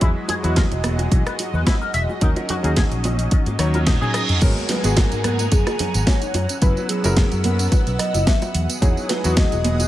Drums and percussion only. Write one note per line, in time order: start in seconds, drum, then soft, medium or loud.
0.01 kick loud
0.01 closed hi-hat medium
0.01 high bongo medium
0.01 shaker medium
0.28 open hi-hat loud
0.28 high bongo medium
0.28 low conga medium
0.28 shaker medium
0.44 closed hi-hat medium
0.44 shaker soft
0.56 kick loud
0.56 snare loud
0.56 closed hi-hat medium
0.56 low conga medium
0.56 shaker medium
0.72 closed hi-hat soft
0.72 high bongo medium
0.72 shaker soft
0.84 cross-stick medium
0.84 open hi-hat medium
0.84 high conga medium
0.84 shaker loud
0.99 closed hi-hat medium
0.99 high bongo medium
0.99 shaker soft
1.12 kick loud
1.12 closed hi-hat medium
1.12 shaker medium
1.26 cross-stick medium
1.26 closed hi-hat soft
1.26 shaker soft
1.39 open hi-hat loud
1.39 high bongo medium
1.39 shaker loud
1.54 high conga medium
1.54 shaker soft
1.67 kick loud
1.67 snare loud
1.67 closed hi-hat medium
1.67 high bongo medium
1.67 shaker medium
1.81 shaker soft
1.94 open hi-hat medium
1.94 shaker medium
2.09 high bongo medium
2.09 shaker soft
2.21 kick loud
2.21 closed hi-hat medium
2.21 shaker medium
2.36 closed hi-hat soft
2.36 high bongo medium
2.36 shaker soft
2.49 open hi-hat loud
2.49 low conga medium
2.49 shaker medium
2.64 closed hi-hat medium
2.64 shaker soft
2.76 kick loud
2.76 snare loud
2.76 closed hi-hat medium
2.76 high bongo medium
2.76 low conga medium
2.76 shaker soft
2.92 closed hi-hat soft
2.92 shaker soft
3.04 open hi-hat medium
3.04 high bongo medium
3.04 high conga medium
3.04 shaker loud
3.19 closed hi-hat medium
3.19 shaker soft
3.31 kick loud
3.31 closed hi-hat medium
3.31 shaker medium
3.46 closed hi-hat soft
3.46 high bongo medium
3.46 shaker soft
3.59 cross-stick medium
3.59 open hi-hat loud
3.59 high tom medium
3.59 shaker medium
3.74 closed hi-hat soft
3.74 high bongo medium
3.74 high conga medium
3.74 shaker soft
3.87 kick loud
3.87 snare loud
3.87 closed hi-hat medium
3.87 mid tom medium
3.87 shaker medium
4.02 mid tom medium
4.02 shaker soft
4.14 cross-stick medium
4.14 open hi-hat medium
4.14 high bongo medium
4.14 shaker medium
4.29 closed hi-hat soft
4.29 mid tom medium
4.29 shaker soft
4.42 kick loud
4.42 closed hi-hat medium
4.42 crash loud
4.42 tambourine medium
4.42 shaker medium
4.57 tambourine soft
4.69 snare medium
4.69 open hi-hat loud
4.69 high bongo medium
4.69 shaker loud
4.84 closed hi-hat medium
4.84 tambourine medium
4.84 shaker soft
4.97 kick loud
4.97 snare loud
4.97 closed hi-hat medium
4.97 tambourine medium
4.97 high bongo medium
4.97 shaker medium
5.12 closed hi-hat soft
5.12 tambourine soft
5.12 shaker soft
5.24 cross-stick medium
5.24 open hi-hat loud
5.24 high conga medium
5.24 shaker medium
5.39 closed hi-hat medium
5.39 tambourine medium
5.39 high bongo medium
5.39 shaker soft
5.52 kick loud
5.52 closed hi-hat medium
5.52 tambourine medium
5.52 shaker soft
5.67 cross-stick medium
5.67 closed hi-hat soft
5.67 tambourine soft
5.67 high bongo medium
5.67 shaker soft
5.79 open hi-hat loud
5.79 low conga loud
5.79 shaker medium
5.94 closed hi-hat medium
5.94 tambourine medium
6.07 kick loud
6.07 snare loud
6.07 closed hi-hat medium
6.07 tambourine medium
6.07 high bongo medium
6.07 shaker medium
6.22 closed hi-hat soft
6.22 tambourine soft
6.22 shaker soft
6.34 open hi-hat loud
6.34 high bongo medium
6.34 shaker medium
6.49 closed hi-hat medium
6.49 tambourine medium
6.49 shaker soft
6.62 kick loud
6.62 closed hi-hat medium
6.62 tambourine medium
6.62 shaker medium
6.77 tambourine soft
6.77 high bongo soft
6.89 open hi-hat loud
6.89 shaker medium
7.04 closed hi-hat medium
7.04 tambourine medium
7.04 high bongo medium
7.04 shaker soft
7.17 kick loud
7.17 snare loud
7.17 closed hi-hat medium
7.17 tambourine medium
7.17 shaker soft
7.32 closed hi-hat soft
7.32 tambourine soft
7.32 shaker soft
7.44 open hi-hat loud
7.44 high bongo soft
7.44 high conga medium
7.44 shaker medium
7.59 closed hi-hat medium
7.59 tambourine medium
7.59 shaker soft
7.72 kick loud
7.72 closed hi-hat medium
7.72 tambourine medium
7.72 high bongo medium
7.72 shaker soft
7.87 closed hi-hat soft
7.87 tambourine soft
7.87 shaker soft
7.99 cross-stick medium
7.99 open hi-hat loud
7.99 shaker loud
8.14 closed hi-hat medium
8.14 tambourine medium
8.14 high bongo medium
8.14 shaker soft
8.27 kick loud
8.27 snare loud
8.27 closed hi-hat medium
8.27 tambourine medium
8.27 shaker medium
8.42 closed hi-hat soft
8.42 tambourine soft
8.42 high bongo medium
8.42 shaker soft
8.55 open hi-hat loud
8.55 shaker medium
8.70 closed hi-hat medium
8.70 tambourine medium
8.70 shaker soft
8.82 kick loud
8.82 closed hi-hat medium
8.82 tambourine medium
8.82 high bongo soft
8.82 shaker soft
8.97 tambourine soft
9.09 snare medium
9.09 open hi-hat loud
9.09 high bongo medium
9.09 shaker medium
9.24 closed hi-hat soft
9.24 tambourine medium
9.24 shaker soft
9.37 kick loud
9.37 snare loud
9.37 closed hi-hat medium
9.37 tambourine medium
9.37 shaker soft
9.52 closed hi-hat soft
9.52 tambourine soft
9.52 high bongo medium
9.52 shaker soft
9.64 open hi-hat loud
9.64 high conga loud
9.64 shaker medium
9.79 closed hi-hat medium
9.79 tambourine medium
9.79 high bongo medium
9.79 shaker soft